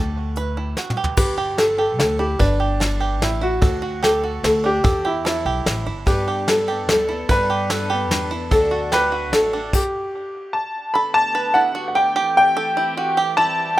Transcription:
0.00 0.73 D2 medium
0.00 0.36 A4 medium
0.36 0.57 B4 medium
0.36 closed hi-hat medium
0.57 0.77 E4 medium
0.77 0.97 F#4 medium
0.77 snare medium
0.90 mid tom medium
0.97 1.17 G4 medium
1.04 floor tom medium
1.17 1.99 G1 medium
1.17 1.60 G4 medium
1.17 1.38 B4 medium
1.17 kick loud
1.17 crash medium
1.38 1.58 G4 medium
1.58 1.76 A4 medium
1.58 1.78 A4 medium
1.58 snare medium
1.58 ride medium
1.78 2.19 G4 medium
1.78 1.97 A4 medium
1.99 2.37 D2 medium
1.99 2.20 A4 medium
1.99 snare medium
1.99 ride medium
2.19 2.40 E4 medium
2.19 2.39 G4 medium
2.39 3.20 G1 medium
2.39 3.24 D4 medium
2.39 2.60 B4 medium
2.39 kick loud
2.39 ride medium
2.60 2.80 G4 medium
2.80 3.01 A4 medium
2.80 snare medium
2.80 ride medium
3.00 3.41 G4 medium
3.20 3.58 A1 medium
3.20 3.43 E4 medium
3.20 snare medium
3.20 ride medium
3.41 3.62 E4 medium
3.41 4.06 F#4 medium
3.62 4.40 D2 medium
3.62 3.82 A4 medium
3.62 kick loud
3.62 ride medium
3.82 4.03 F#4 medium
4.03 4.23 G4 medium
4.03 4.41 A4 medium
4.03 snare medium
4.03 ride medium
4.24 4.64 F#4 medium
4.43 4.82 D2 medium
4.43 4.64 A4 medium
4.43 snare medium
4.43 ride medium
4.64 4.84 D4 medium
4.64 5.07 G4 loud
4.84 5.45 E2 medium
4.84 5.04 A4 medium
4.84 kick loud
4.84 ride medium
5.05 5.25 E4 medium
5.05 5.25 G4 medium
5.25 5.83 E4 medium
5.25 5.45 A4 medium
5.25 snare medium
5.25 ride medium
5.45 5.64 B1 medium
5.45 5.86 G4 medium
5.66 5.85 A1 medium
5.66 snare medium
5.66 ride medium
5.86 6.05 G1 medium
5.86 6.07 E4 medium
6.06 6.88 G2 medium
6.06 6.47 G3 medium
6.06 6.48 B3 medium
6.06 6.50 D4 medium
6.06 6.49 G4 medium
6.06 6.51 A4 medium
6.06 6.27 B4 medium
6.06 kick loud
6.06 ride medium
6.28 6.48 G4 medium
6.48 6.69 G3 medium
6.48 6.69 B3 medium
6.48 6.69 D4 medium
6.48 6.68 A4 medium
6.48 6.88 A4 medium
6.48 6.67 A4 medium
6.48 snare medium
6.48 ride medium
6.68 6.89 B3 soft
6.68 6.89 D4 soft
6.68 7.08 G4 medium
6.68 6.89 A4 soft
6.88 7.26 D2 medium
6.88 7.10 G3 medium
6.88 7.10 B3 medium
6.88 7.10 D4 medium
6.88 7.27 A4 medium
6.88 7.09 A4 medium
6.88 snare medium
6.88 ride medium
7.09 7.29 B3 soft
7.09 7.29 D4 soft
7.09 7.29 E4 medium
7.09 7.30 A4 soft
7.29 8.10 G2 medium
7.29 7.69 G3 medium
7.29 7.69 B3 medium
7.29 7.71 D4 medium
7.29 7.72 A4 medium
7.29 7.49 B4 medium
7.29 8.28 B4 medium
7.29 kick loud
7.29 ride medium
7.50 7.70 G4 medium
7.70 7.90 G3 medium
7.70 7.91 B3 medium
7.70 7.90 D4 medium
7.70 7.90 A4 medium
7.70 7.89 A4 medium
7.70 snare medium
7.70 ride medium
7.90 8.11 B3 soft
7.90 8.11 D4 soft
7.90 8.30 G4 medium
7.90 8.11 A4 medium
8.10 8.48 E2 medium
8.10 8.31 G3 medium
8.10 8.32 B3 medium
8.10 8.32 D4 medium
8.10 8.31 A4 medium
8.10 snare medium
8.10 ride medium
8.31 8.53 B3 soft
8.31 8.53 D4 soft
8.31 8.51 E4 medium
8.31 8.52 A4 medium
8.51 9.33 D2 medium
8.51 8.93 D3 medium
8.51 8.92 F#3 medium
8.51 8.93 A3 medium
8.51 8.93 D4 medium
8.51 8.94 F#4 medium
8.51 8.71 A4 medium
8.51 8.94 A4 medium
8.51 kick loud
8.51 ride medium
8.71 8.92 F#4 medium
8.92 9.32 F#3 medium
8.92 9.32 A3 medium
8.92 9.34 D4 medium
8.92 9.34 F#4 medium
8.92 9.12 G4 medium
8.92 9.31 B4 loud
8.92 snare medium
8.92 ride medium
9.12 9.52 F#4 medium
9.33 9.70 A1 medium
9.33 9.53 F#3 medium
9.33 9.54 A3 medium
9.33 9.53 D4 medium
9.33 9.52 F#4 medium
9.33 9.75 A4 medium
9.33 snare medium
9.33 ride medium
9.53 9.75 A3 soft
9.53 9.73 D4 medium
9.53 9.74 D4 soft
9.53 9.74 F#4 soft
9.73 10.51 G4 medium
9.73 kick medium
9.73 crash medium
10.53 10.96 A5 medium
10.93 12.15 D3 medium
10.93 13.35 A3 medium
10.93 12.15 B3 medium
10.93 13.80 G4 medium
10.93 11.34 A4 loud
10.93 11.13 B5 medium
11.14 11.57 A5 loud
11.35 11.55 B4 medium
11.54 11.74 E4 medium
11.54 11.86 F#5 loud
11.75 11.95 F#4 medium
11.88 11.96 F#5 medium
11.95 12.15 G4 medium
11.95 12.36 G5 loud
12.16 13.80 E3 medium
12.16 13.80 C4 medium
12.16 12.56 G4 medium
12.37 13.14 G5 loud
12.57 12.77 A4 medium
12.77 12.97 E4 medium
12.97 13.17 F#4 medium
13.17 13.37 G4 medium
13.37 13.80 G3 medium
13.37 13.77 E4 loud
13.37 13.79 A5 loud

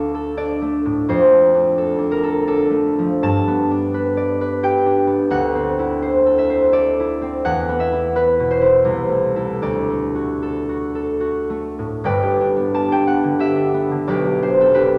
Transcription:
0.00 1.12 D2 medium
0.00 0.61 A3 soft
0.00 0.36 D4 medium
0.00 2.10 F4 soft
0.00 0.13 A4 medium
0.00 2.90 F5 medium
0.14 1.77 A4 medium
0.37 1.53 D4 medium
0.37 4.16 D5 medium
0.62 1.31 A3 soft
0.85 1.12 A2 soft
1.09 3.25 F2 medium
1.09 2.87 C5 medium
1.32 2.69 A3 medium
1.54 1.97 D4 medium
1.78 2.22 A4 medium
1.99 2.46 D4 medium
2.11 2.71 A#4 medium
2.23 2.46 A4 medium
2.47 3.70 D4 medium
2.47 3.25 A4 medium
2.71 3.24 A3 medium
2.99 3.26 F3 medium
3.23 5.34 G2 medium
3.23 5.59 A5 loud
3.48 5.06 B3 medium
3.71 4.85 D4 medium
3.94 4.40 B4 medium
4.17 6.72 D5 medium
4.41 5.34 B4 medium
4.63 5.34 G4 medium
4.63 5.34 G5 loud
4.86 7.48 D4 medium
5.07 5.33 B3 medium
5.30 7.47 D2 medium
5.30 7.43 F#5 loud
5.55 7.21 C4 medium
5.79 6.99 E4 medium
6.02 6.49 C5 medium
6.26 6.72 A4 medium
6.38 7.79 E5 medium
6.50 7.47 C5 medium
6.73 7.47 A4 medium
6.73 7.47 D5 loud
7.00 7.91 E4 medium
7.22 7.47 C4 medium
7.45 8.90 E2 medium
7.45 8.04 F#5 loud
7.69 8.14 B3 medium
7.80 9.66 E5 medium
7.92 8.60 E4 medium
8.15 8.89 B3 medium
8.15 8.90 B4 medium
8.40 8.90 B2 medium
8.51 9.66 C5 medium
8.61 9.34 E4 medium
8.85 9.65 C2 medium
9.09 9.89 A3 soft
9.36 9.65 E4 soft
9.36 10.41 A4 medium
9.62 12.08 D2 medium
9.62 12.05 D5 medium
9.90 11.48 A3 medium
10.15 10.68 F#4 soft
10.42 10.94 A4 medium
10.69 11.19 F#4 medium
10.95 12.08 A4 medium
11.20 12.08 F#4 medium
11.50 12.08 A3 soft
11.79 12.08 A2 soft
12.04 14.09 G1 medium
12.04 14.09 G2 medium
12.04 14.08 B4 medium
12.04 14.07 D5 medium
12.04 12.91 G5 medium
12.23 12.73 G4 medium
12.41 12.90 D4 medium
12.56 13.06 B3 soft
12.74 13.38 G4 medium
12.74 13.01 A5 loud
12.91 13.54 D4 medium
12.91 13.18 G5 medium
13.07 13.73 B3 medium
13.07 13.63 F#5 medium
13.24 13.90 D3 medium
13.39 14.08 G4 medium
13.39 14.55 E5 medium
13.56 14.41 D4 medium
13.74 14.59 B3 medium
13.91 14.10 D3 soft
14.07 14.98 B1 medium
14.07 14.24 G4 medium
14.07 14.73 B4 medium
14.07 14.98 D5 medium
14.25 14.74 G4 medium
14.42 14.75 D4 medium
14.42 14.70 C5 medium
14.60 14.98 B3 soft
14.60 14.87 A4 medium
14.74 14.88 D4 medium
14.74 14.98 G4 medium
14.74 14.98 B4 medium
14.89 14.98 D4 medium

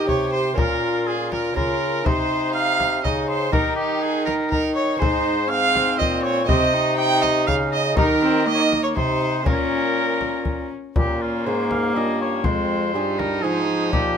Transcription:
0.00 0.53 D#4 soft
0.00 0.54 G4 medium
0.00 0.55 G4 medium
0.07 0.56 C3 medium
0.07 0.53 C3 medium
0.07 0.31 C#5 medium
0.07 0.32 C#5 medium
0.07 frame drum soft
0.32 0.56 C5 medium
0.54 1.57 A#2 medium
0.54 1.51 A#3 medium
0.54 1.52 C#4 medium
0.54 1.54 F4 medium
0.54 1.53 F4 medium
0.54 1.05 A#4 medium
0.54 frame drum medium
0.58 1.53 A#2 medium
0.58 1.08 A#4 loud
1.07 1.32 G#4 medium
1.07 1.31 G#4 medium
1.32 1.56 A#4 medium
1.32 1.55 A#4 medium
1.32 frame drum medium
1.52 2.05 C#3 medium
1.52 2.01 C#3 medium
1.52 2.02 A#3 medium
1.52 2.03 C#4 medium
1.52 2.03 F4 medium
1.52 2.04 F4 medium
1.52 2.07 A#4 loud
1.52 2.06 A#4 medium
1.57 frame drum medium
2.04 3.05 C3 medium
2.04 3.00 C3 medium
2.04 3.48 D#4 medium
2.04 3.01 D#4 medium
2.04 2.53 C5 medium
2.04 2.54 C5 loud
2.04 frame drum medium
2.54 3.02 F5 loud
2.54 3.06 F5 loud
2.80 frame drum medium
3.03 3.52 C#3 medium
3.03 3.49 C#3 medium
3.03 3.52 D#4 medium
3.03 3.28 D#5 medium
3.03 3.27 D#5 medium
3.03 frame drum medium
3.28 3.52 C5 loud
3.28 3.55 C5 medium
3.51 4.97 D#3 medium
3.51 4.96 D#4 medium
3.51 4.49 D#4 medium
3.51 4.96 G4 medium
3.51 3.75 A#4 loud
3.51 3.78 A#4 medium
3.51 frame drum medium
3.76 4.01 G4 loud
3.76 4.04 G4 medium
4.01 4.24 G#4 loud
4.01 4.25 G#4 loud
4.25 4.50 A#4 medium
4.25 4.34 A#4 medium
4.25 frame drum medium
4.50 4.99 D#4 medium
4.50 4.75 A#4 medium
4.50 4.62 A#4 medium
4.50 frame drum medium
4.75 5.00 C#5 medium
4.75 5.01 C#5 loud
4.97 5.95 G#2 medium
4.97 6.00 G#2 medium
4.97 6.42 C4 medium
4.97 6.43 D#4 medium
4.97 5.46 D#4 medium
4.97 6.44 G#4 medium
4.97 5.50 C5 loud
4.97 5.49 C5 medium
5.02 frame drum medium
5.49 6.46 C4 medium
5.49 6.00 F5 loud
5.49 5.98 F5 loud
5.76 frame drum medium
5.99 6.50 A#2 medium
5.99 6.45 A#2 medium
5.99 6.24 D#5 loud
5.99 6.22 D#5 medium
5.99 frame drum medium
6.23 6.47 C#5 loud
6.23 6.46 C#5 loud
6.46 7.49 C3 medium
6.46 7.44 C3 medium
6.46 7.92 C4 medium
6.46 6.75 C4 medium
6.46 7.92 D#4 medium
6.46 7.93 G4 medium
6.46 6.96 D#5 loud
6.46 6.97 D#5 loud
6.46 frame drum medium
6.73 7.96 D#4 loud
6.97 7.23 G5 loud
6.97 7.21 G5 loud
7.21 7.48 D#5 loud
7.21 7.46 D#5 loud
7.21 frame drum medium
7.47 7.98 C#3 medium
7.47 7.93 C#3 medium
7.47 7.55 F5 loud
7.47 7.71 F5 loud
7.47 frame drum medium
7.71 7.96 D#5 loud
7.71 7.97 D#5 loud
7.94 8.79 D#3 medium
7.94 8.93 D#3 medium
7.94 8.92 A#3 medium
7.94 9.41 D#4 medium
7.94 8.05 D#4 medium
7.94 9.42 G4 medium
7.94 8.46 A#4 loud
7.94 frame drum medium
7.99 8.46 A#4 loud
8.22 8.48 C4 loud
8.46 8.97 A#3 medium
8.46 8.83 D#5 loud
8.46 8.56 D#5 loud
8.54 8.62 C#5 medium
8.61 8.83 D#5 loud
8.72 frame drum medium
8.83 8.88 C#5 medium
8.83 8.96 C#5 medium
8.95 9.47 C3 medium
8.95 9.42 C3 medium
8.95 9.45 D#4 medium
8.95 9.47 C5 medium
8.95 9.45 C5 loud
8.95 frame drum medium
9.43 10.71 A#2 medium
9.43 10.68 A#2 medium
9.43 10.91 A#3 soft
9.43 10.92 C#4 medium
9.43 10.74 C#4 medium
9.43 10.92 F4 medium
9.43 10.71 A#4 medium
9.43 10.69 A#4 loud
9.43 frame drum medium
10.21 frame drum medium
10.45 frame drum soft
10.96 11.42 A#2 medium
10.96 12.46 A#3 medium
10.96 11.96 C#4 medium
10.96 11.23 G4 loud
10.96 frame drum medium
11.21 11.47 F4 medium
11.46 11.96 G#2 medium
11.46 11.92 G#2 medium
11.46 11.92 A#3 soft
11.46 11.92 C#4 medium
11.46 11.92 F4 medium
11.46 11.71 C5 medium
11.71 11.98 F5 loud
11.71 frame drum medium
11.95 12.46 G2 medium
11.95 12.41 G2 medium
11.95 12.46 A#3 medium
11.95 12.41 A#3 medium
11.95 12.41 C#4 medium
11.95 12.41 F4 medium
11.95 12.21 D#5 loud
12.21 12.46 C#5 loud
12.44 12.93 F2 medium
12.44 12.91 F2 medium
12.44 12.94 G#3 medium
12.44 12.96 C4 medium
12.44 13.20 C5 loud
12.44 frame drum medium
12.93 13.42 G2 medium
12.93 13.40 G2 medium
12.93 13.44 G3 medium
12.93 13.40 C4 medium
12.93 14.17 D#4 medium
12.93 13.40 F4 medium
12.93 13.40 G#4 medium
13.18 13.44 A#4 loud
13.18 frame drum medium
13.42 13.94 G#2 medium
13.42 13.89 G#2 medium
13.42 13.66 F3 medium
13.42 13.89 G#3 medium
13.42 13.89 C4 medium
13.42 13.89 F4 medium
13.42 13.92 G#4 loud
13.67 14.17 F3 medium
13.92 14.17 A#2 medium
13.92 14.17 G4 loud
13.92 frame drum medium

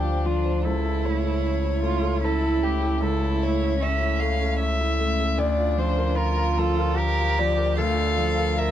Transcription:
0.00 0.61 D2 soft
0.00 0.66 D2 medium
0.00 0.25 F3 soft
0.00 0.60 F3 medium
0.00 0.66 D4 medium
0.00 0.04 F4 soft
0.00 0.36 F4 soft
0.00 0.27 G4 soft
0.00 0.61 A4 medium
0.00 0.45 C5 soft
0.00 0.61 C5 medium
0.25 0.57 F3 soft
0.25 0.64 F4 soft
0.45 0.65 C5 soft
0.63 5.38 C#2 medium
0.63 2.99 C#2 medium
0.63 5.33 A3 medium
0.63 5.38 C#4 medium
0.63 1.82 E4 medium
0.63 1.07 A4 soft
0.63 5.38 C#5 medium
0.84 1.17 E4 soft
1.04 1.36 A3 soft
1.04 2.26 C#5 medium
1.24 1.88 A4 soft
1.64 1.96 E4 soft
1.82 2.15 A3 soft
1.82 2.22 F4 medium
2.01 2.66 A4 soft
2.23 3.00 E4 medium
2.23 2.65 A4 medium
2.41 2.73 E4 soft
2.62 2.94 A3 soft
2.62 3.03 G4 medium
2.81 3.14 A4 soft
3.00 5.33 C#2 medium
3.00 3.79 E4 medium
3.00 3.45 A4 medium
3.21 3.53 E4 soft
3.43 3.74 A3 soft
3.43 3.84 C#5 medium
3.62 4.25 A4 medium
3.80 4.58 C#4 medium
3.80 4.21 E5 medium
4.01 4.32 E4 soft
4.20 4.52 A3 soft
4.20 4.59 F5 medium
4.41 5.03 A4 soft
4.59 5.40 E5 medium
4.80 5.11 E4 soft
4.99 5.30 A3 medium
5.20 5.39 A4 medium
5.37 8.71 D2 medium
5.37 7.73 D2 medium
5.37 8.71 F3 medium
5.37 6.17 D4 medium
5.37 8.71 F4 medium
5.37 8.71 D5 medium
5.37 5.80 D5 medium
5.58 5.89 F4 soft
5.77 6.09 F3 soft
5.77 6.19 C5 medium
5.97 6.61 A#4 soft
6.15 6.98 F4 medium
6.15 6.59 A#4 medium
6.36 6.69 F4 medium
6.57 6.89 F3 soft
6.57 6.99 A4 medium
6.78 7.42 A#4 medium
6.96 7.79 G4 medium
6.96 7.40 A#4 medium
7.19 7.50 F4 soft
7.38 7.70 F3 medium
7.38 7.78 D5 medium
7.58 7.89 A#4 medium
7.77 8.71 D2 medium
7.77 8.58 A4 medium
7.77 8.60 F5 medium
7.98 8.30 F4 soft
8.18 8.49 F3 medium
8.37 8.71 A#4 soft
8.56 8.71 A#4 loud
8.56 8.71 E5 medium

